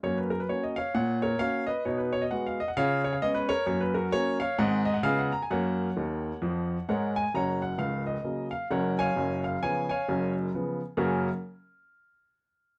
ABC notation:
X:1
M:4/4
L:1/16
Q:"Swing" 1/4=131
K:F#
V:1 name="Upright piano"
c B A B c d [ce]2 [cf]2 [Ac]2 [ce]2 [Bd]2 | c B c d f e d f [ce]2 c e d B [Ac]2 | c B [FA]2 [Ac]2 [ce]2 [df]2 d f e f a g | [cf]12 [Acf]2 g2 |
[cfa]2 f2 e2 d4 e2 [Acf]2 [ceg]2- | [ceg]2 e2 [ceg]2 [ceg]4 z6 | [F,,C,A,CFAf]2 z12 z2 |]
V:2 name="Upright piano" clef=bass
[F,,A,]4 [A,CF]4 A,,4 [A,CF]4 | [B,,D]4 [G,B,F]4 [C,E]4 [G,B,C]4 | [F,,A,]4 [F,A,C]4 [G,,D,G,^B,]4 [C,G,=B,E]4 | [F,,A,]4 [D,,D,]4 [E,,E,]4 [G,,G,]4 |
[F,,,F,,]4 [C,,,C,,]4 [C,F,A,]4 [F,,,F,,]4 | [F,,,F,,]4 [C,E,B,]4 [F,,,F,,]4 [C,E,B,]4 | z16 |]